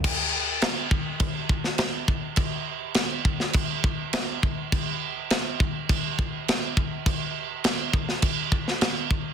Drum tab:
CC |x---x---x---x---|x---x---x---x---|x---x---x---x---|x---x---x---x---|
SD |----o------oo---|----o--o----o---|----o-------o---|----o--o---oo---|
BD |o-----o-o-o---o-|o-----o-o-o---o-|o-----o-o-o---o-|o-----o-o-o---o-|